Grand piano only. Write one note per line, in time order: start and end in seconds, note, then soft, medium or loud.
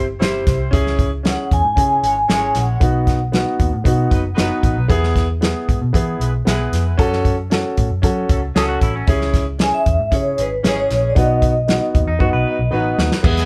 0.20 0.56 C4 medium
0.20 0.56 E4 medium
0.20 0.57 G4 medium
0.71 1.08 C#4 loud
0.71 1.08 E4 medium
0.71 1.09 G#4 loud
1.23 1.60 C#4 medium
1.23 1.60 E4 medium
1.23 1.61 G#4 medium
1.76 2.12 C#4 medium
1.76 2.13 E4 medium
1.76 2.13 G#4 medium
2.28 2.64 C#4 medium
2.28 2.65 E4 medium
2.28 2.66 G#4 medium
2.80 3.17 B3 medium
2.80 3.17 D#4 medium
2.80 3.18 F#4 medium
3.32 3.69 B3 medium
3.32 3.69 D#4 medium
3.32 3.70 F#4 medium
3.84 4.21 B3 medium
3.84 4.21 D#4 medium
3.84 4.22 F#4 medium
4.37 4.73 B3 medium
4.37 4.74 D#4 medium
4.37 4.74 F#4 medium
4.88 5.25 B3 medium
4.88 5.25 E4 medium
4.88 5.26 G#4 loud
5.41 5.77 B3 medium
5.41 5.78 E4 medium
5.41 5.78 G#4 medium
5.93 6.29 B3 medium
5.93 6.30 E4 medium
5.93 6.30 G#4 medium
6.45 6.82 B3 medium
6.45 6.82 E4 medium
6.45 6.83 G#4 medium
6.97 7.34 C#4 loud
6.97 7.34 F#4 medium
6.97 7.35 A4 loud
7.50 7.86 C#4 medium
7.50 7.87 F#4 medium
7.50 7.87 A4 medium
8.02 8.38 C#4 medium
8.02 8.39 F#4 medium
8.02 8.39 A4 medium
8.55 8.91 C#4 medium
8.55 8.91 F#4 medium
8.55 8.92 A4 medium
9.07 9.43 C#4 loud
9.07 9.43 E4 loud
9.07 9.44 G#4 loud
9.59 9.95 C#4 medium
9.59 9.96 E4 medium
9.59 9.96 G#4 medium
10.11 10.47 C#4 medium
10.11 10.48 E4 medium
10.11 10.48 G#4 medium
10.63 10.99 C#4 medium
10.63 11.00 E4 medium
10.63 11.00 G#4 medium
11.15 11.51 B3 medium
11.15 11.52 D#4 medium
11.15 11.52 F#4 medium
11.68 12.04 B3 medium
11.68 12.04 D#4 medium
11.68 12.05 F#4 medium
12.19 12.55 B3 medium
12.19 12.55 D#4 medium
12.19 12.56 F#4 medium
12.71 13.07 B3 medium
12.71 13.08 D#4 medium
12.71 13.08 F#4 medium
13.23 13.45 B3 medium
13.23 13.45 E4 medium
13.23 13.45 G#4 medium